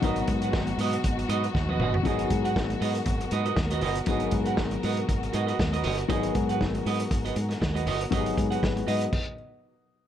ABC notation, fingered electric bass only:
X:1
M:4/4
L:1/8
Q:"Swing 16ths" 1/4=119
K:G#m
V:1 name="Fingered electric bass" clef=bass
G,,, G,, G,,, G,, G,,, G,, D,, =G,,, | G,,, G,, G,,, G,, G,,, G,, D,, =G,,, | G,,, G,, G,,, G,, G,,, G,, D,, =G,,, | G,,, G,, G,,, G,, G,,, G,, D,, =G,,, |
G,,, G,, G,,, G,, z4 |]